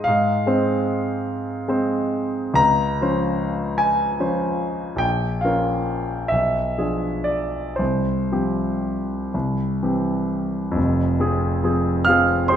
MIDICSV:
0, 0, Header, 1, 2, 480
1, 0, Start_track
1, 0, Key_signature, -4, "minor"
1, 0, Tempo, 806452
1, 40, Time_signature, 6, 3, 24, 8
1, 1001, Tempo, 899550
1, 1481, Tempo, 814111
1, 2921, Tempo, 849858
1, 3401, Tempo, 906344
1, 3881, Tempo, 1015228
1, 5321, Tempo, 944882
1, 5801, Tempo, 868307
1, 6793, End_track
2, 0, Start_track
2, 0, Title_t, "Grand piano"
2, 0, Program_c, 0, 0
2, 0, Control_c, 0, 64, 127
2, 24, Note_on_c, 0, 77, 85
2, 44, Note_on_c, 0, 44, 60
2, 51, Control_c, 0, 64, 0
2, 152, Control_c, 0, 64, 127
2, 270, Note_off_c, 0, 44, 0
2, 277, Note_on_c, 0, 56, 44
2, 280, Note_on_c, 0, 60, 45
2, 282, Note_on_c, 0, 72, 48
2, 978, Note_off_c, 0, 56, 0
2, 980, Note_off_c, 0, 60, 0
2, 981, Note_off_c, 0, 72, 0
2, 1001, Note_on_c, 0, 56, 44
2, 1004, Note_on_c, 0, 60, 43
2, 1008, Note_on_c, 0, 72, 46
2, 1457, Note_on_c, 0, 37, 59
2, 1460, Note_off_c, 0, 56, 0
2, 1462, Note_off_c, 0, 60, 0
2, 1463, Note_off_c, 0, 72, 0
2, 1467, Note_on_c, 0, 82, 92
2, 1474, Note_off_c, 0, 77, 0
2, 1490, Control_c, 0, 64, 0
2, 1605, Control_c, 0, 64, 127
2, 1705, Note_off_c, 0, 37, 0
2, 1735, Note_on_c, 0, 53, 44
2, 1740, Note_on_c, 0, 72, 47
2, 1741, Note_on_c, 0, 61, 46
2, 2187, Note_on_c, 0, 80, 74
2, 2196, Note_off_c, 0, 82, 0
2, 2422, Note_off_c, 0, 53, 0
2, 2424, Note_off_c, 0, 72, 0
2, 2425, Note_off_c, 0, 61, 0
2, 2435, Note_on_c, 0, 53, 41
2, 2436, Note_on_c, 0, 61, 41
2, 2439, Note_on_c, 0, 72, 45
2, 2884, Note_on_c, 0, 34, 55
2, 2895, Note_off_c, 0, 53, 0
2, 2895, Note_off_c, 0, 61, 0
2, 2897, Note_off_c, 0, 72, 0
2, 2898, Note_on_c, 0, 79, 81
2, 2912, Note_off_c, 0, 80, 0
2, 2930, Control_c, 0, 64, 0
2, 3037, Control_c, 0, 64, 127
2, 3134, Note_off_c, 0, 34, 0
2, 3139, Note_on_c, 0, 77, 61
2, 3149, Note_off_c, 0, 79, 0
2, 3159, Note_on_c, 0, 53, 41
2, 3160, Note_on_c, 0, 70, 44
2, 3161, Note_on_c, 0, 61, 39
2, 3614, Note_off_c, 0, 53, 0
2, 3614, Note_off_c, 0, 70, 0
2, 3615, Note_off_c, 0, 61, 0
2, 3618, Note_on_c, 0, 76, 69
2, 3626, Note_off_c, 0, 77, 0
2, 3635, Note_on_c, 0, 35, 48
2, 3644, Control_c, 0, 64, 0
2, 3749, Control_c, 0, 64, 127
2, 3873, Note_off_c, 0, 35, 0
2, 3881, Note_on_c, 0, 62, 35
2, 3883, Note_on_c, 0, 53, 36
2, 3883, Note_on_c, 0, 68, 41
2, 4099, Note_on_c, 0, 74, 63
2, 4106, Note_off_c, 0, 76, 0
2, 4341, Note_off_c, 0, 62, 0
2, 4342, Note_off_c, 0, 53, 0
2, 4342, Note_off_c, 0, 68, 0
2, 4344, Note_on_c, 0, 72, 54
2, 4353, Note_off_c, 0, 74, 0
2, 4359, Note_on_c, 0, 36, 46
2, 4370, Control_c, 0, 64, 0
2, 4465, Control_c, 0, 64, 127
2, 4601, Note_off_c, 0, 36, 0
2, 4610, Note_on_c, 0, 53, 35
2, 4611, Note_on_c, 0, 60, 33
2, 4612, Note_on_c, 0, 67, 40
2, 5072, Note_off_c, 0, 53, 0
2, 5072, Note_off_c, 0, 60, 0
2, 5073, Note_off_c, 0, 67, 0
2, 5082, Note_off_c, 0, 72, 0
2, 5093, Note_on_c, 0, 36, 44
2, 5098, Control_c, 0, 64, 0
2, 5191, Control_c, 0, 64, 127
2, 5317, Note_off_c, 0, 36, 0
2, 5321, Note_on_c, 0, 52, 36
2, 5324, Note_on_c, 0, 60, 34
2, 5327, Note_on_c, 0, 67, 39
2, 5772, Note_on_c, 0, 41, 57
2, 5781, Note_off_c, 0, 52, 0
2, 5783, Note_off_c, 0, 60, 0
2, 5784, Note_off_c, 0, 67, 0
2, 5797, Note_on_c, 0, 29, 53
2, 5811, Control_c, 0, 64, 0
2, 5918, Control_c, 0, 64, 127
2, 6015, Note_off_c, 0, 41, 0
2, 6029, Note_off_c, 0, 29, 0
2, 6038, Note_on_c, 0, 53, 43
2, 6038, Note_on_c, 0, 60, 43
2, 6043, Note_on_c, 0, 68, 47
2, 6255, Note_off_c, 0, 53, 0
2, 6255, Note_off_c, 0, 60, 0
2, 6258, Note_off_c, 0, 68, 0
2, 6279, Note_on_c, 0, 53, 43
2, 6282, Note_on_c, 0, 60, 43
2, 6284, Note_on_c, 0, 68, 47
2, 6497, Note_off_c, 0, 53, 0
2, 6499, Note_off_c, 0, 60, 0
2, 6500, Note_off_c, 0, 68, 0
2, 6506, Note_on_c, 0, 89, 87
2, 6514, Note_on_c, 0, 77, 63
2, 6524, Note_on_c, 0, 53, 43
2, 6528, Note_on_c, 0, 60, 44
2, 6530, Note_on_c, 0, 68, 49
2, 6742, Note_off_c, 0, 53, 0
2, 6742, Note_off_c, 0, 77, 0
2, 6744, Note_off_c, 0, 60, 0
2, 6745, Note_off_c, 0, 68, 0
2, 6747, Note_on_c, 0, 84, 80
2, 6754, Note_on_c, 0, 72, 56
2, 6755, Note_off_c, 0, 89, 0
2, 6765, Note_on_c, 0, 53, 41
2, 6768, Note_on_c, 0, 60, 42
2, 6772, Note_on_c, 0, 68, 46
2, 6793, Note_off_c, 0, 53, 0
2, 6793, Note_off_c, 0, 60, 0
2, 6793, Note_off_c, 0, 68, 0
2, 6793, Note_off_c, 0, 72, 0
2, 6793, Note_off_c, 0, 84, 0
2, 6793, End_track
0, 0, End_of_file